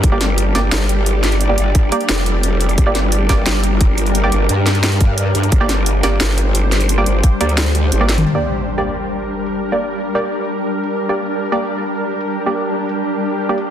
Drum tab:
HH |x-x-x-x-x-x-x-xx|x-x-x-xxxxx-x-xx|x-x-x-x-x-x-x-xx|x-x-x-xxxxx-x-xx|
SD |--o---o-o-----o-|--------o-------|--o---o-o-------|------o-o-------|
T2 |----------------|----------------|----------------|----------------|
BD |o---------------|----o-----------|o-----o-----o---|----------o-----|

HH |x-x-x-x-x-x-x-xx|x-x-x-xxxxx-x-xx|------o-------o-|------o-------o-|
SD |--o---o-o-----o-|--------o-----o-|----------------|----------------|
T2 |----------------|---------------o|----------------|----------------|
BD |o---------------|----o-----------|----------------|----------------|

HH |------o-------o-|------o-------o-|
SD |----------------|----------------|
T2 |----------------|----------------|
BD |----------------|----------------|